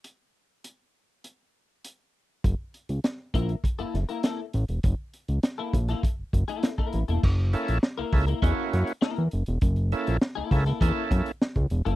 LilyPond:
<<
  \new Staff \with { instrumentName = "Clean electric guitar" } { \time 4/4 \key fis \mixolydian \tempo 4 = 100 r1 | r4. <ais e' ais'>16 r8 <ais e' a'>16 r16 <ais e' ais'>16 <ais e' a'>16 r8. | r4 r16 <ais e' a'>16 r16 <ais e' a'>16 r8. <ais e' a'>16 r16 <ais e' ais'>16 r16 <ais e' a'>16 | r4 r16 <ais e' ais'>16 r16 <ais e' ais'>16 <ais e' a'>16 r8. <ais e' ais'>16 r8. |
r4 r16 <ais e' a'>16 r16 <ais e' a'>16 <ais e' a'>16 r4. <ais e' a'>16 | }
  \new Staff \with { instrumentName = "Tonewheel organ" } { \time 4/4 \key fis \mixolydian r1 | r1 | r1 | r8 <ais cis' e' a'>8 r8 <ais cis' e' a'>8 <ais cis' e' fis'>4 r4 |
r8 <ais cis' e' a'>8 r8 <ais cis' e' a'>8 <ais cis' e' a'>4 r4 | }
  \new Staff \with { instrumentName = "Analog synth bass" } { \clef bass \time 4/4 \key fis \mixolydian r1 | fis,,16 r8 cis,16 r8 ais,,8 r16 fis,,16 fis,,16 r8. a,,16 e,,16 | fis,,16 r8 cis,16 r8 ais,,8 r16 fis,,16 fis,,16 r8. a,,16 e,,16 | fis,,8. ais,,16 r16 cis,16 cis,8 e,16 r16 fis,16 r8 e,16 fis,,16 e,,16 |
fis,,8. ais,,16 r16 cis,16 cis,8 e,16 r16 fis,16 r8 cis,16 e,,16 fis,,16 | }
  \new DrumStaff \with { instrumentName = "Drums" } \drummode { \time 4/4 hh4 hh4 hh4 hh4 | <hh bd>8 hh16 hh16 <hh sn>8 <hh bd>16 hh16 <hh bd>16 hh16 <hh sn>16 hh16 <hh sn>8 hh16 hh16 | <hh bd>8 hh16 hh16 <hh sn>8 <hh bd>16 <hh sn>16 <hh bd>8 <hh bd>16 hh16 <hh sn>16 bd16 hh16 hh16 | <cymc bd>8 hh16 hh16 sn8 <hho bd>16 hh16 <hh bd>8 <hh sn>16 hh16 sn16 hh16 hh16 hh16 |
<hh bd>16 hh16 hh16 hh16 sn8 <hho bd>16 <hh sn>16 <hh bd>8 <hh bd sn>16 hh16 sn16 <hh bd>16 hh16 hh16 | }
>>